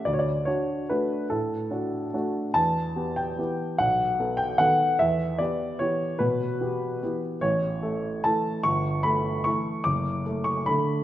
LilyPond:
<<
  \new Staff \with { instrumentName = "Upright piano" } { \time 3/4 \key d \major \tempo 4 = 147 \tuplet 3/2 { d''16 cis''16 d''4 } cis''4 b'4 | a'2~ a'8 r8 | a''4. g''4. | fis''4. g''8 fis''4 |
e''4 d''4 cis''4 | b'2~ b'8 r8 | cis''2 a''4 | cis'''4 b''4 cis'''4 |
d'''4. cis'''8 b''4 | }
  \new Staff \with { instrumentName = "Upright piano" } { \time 3/4 \key d \major d,4 <d' fis'>4 <a d' fis'>4 | a,4 <d' fis'>4 <a d' fis'>4 | e,4 <b g'>4 <e b g'>4 | b,,4 <b a'>4 <dis b a'>4 |
e,4 <b g'>4 <e b g'>4 | b,4 <b g'>4 <e b g'>4 | a,,4 <a a'>4 <e a a'>4 | g,,4 <a a'>4 <e a a'>4 |
fis,,4 <a a'>4 <d a a'>4 | }
>>